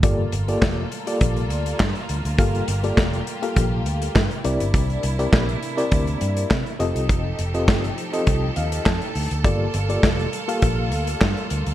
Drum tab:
HH |x-xx--xxxxxx-xxx|xxxx-xxxx-xx-xxx|xxxx-xxxxxxx-xxx|x-xx-xxxx-xx-xox|
CP |----x-------x---|----x-------x---|----x-------x---|----x-------x---|
SD |----o-------o---|----o-------o---|----o-------o---|----o-------o---|
BD |o---o---o---o---|o---o---o---o---|o---o---o---o---|o---o---o---o---|

HH |x-xx-xxxx-xx-xxx|
CP |----x-------x---|
SD |----o-------o---|
BD |o---o---o---o---|